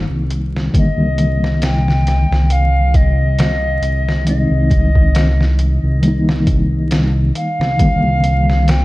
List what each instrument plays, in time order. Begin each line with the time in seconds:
Already playing: reed electric piano D#3 G3 A#3 D#4
0.10 detuned saw bass C2
0.30 closed hi-hat
0.56 snare
0.71 reed electric piano D#3 G3 A#3, kick, closed hi-hat
0.77 reed electric piano D3, flute D#5
0.98 detuned saw bass C2
1.18 closed hi-hat
1.44 snare
1.62 flute G5, snare, closed hi-hat
1.88 snare
2.07 snare, closed hi-hat
2.31 detuned saw bass C2, snare
2.50 flute F5, closed hi-hat
2.94 flute D#5, kick, closed hi-hat
3.39 snare, closed hi-hat
3.82 detuned saw bass C2, closed hi-hat
4.09 snare
4.24 reed electric piano D#3 G#3, flute D#5, closed hi-hat
4.29 reed electric piano C4 D#4
4.51 detuned saw bass C2
4.71 kick, closed hi-hat
4.95 kick
5.15 snare, closed hi-hat
5.41 snare
5.59 closed hi-hat
5.83 detuned saw bass C2
6.01 reed electric piano D#3 G3, closed hi-hat
6.05 reed electric piano A#3 D#4
6.29 snare
6.47 kick, closed hi-hat
6.91 snare, closed hi-hat
7.35 flute F5, closed hi-hat
7.60 detuned saw bass C2, snare
7.76 reed electric piano D#3 G3, kick, closed hi-hat
7.81 reed electric piano D3 A#3
8.03 detuned saw bass C2
8.24 closed hi-hat
8.50 snare
8.68 flute G5, snare, closed hi-hat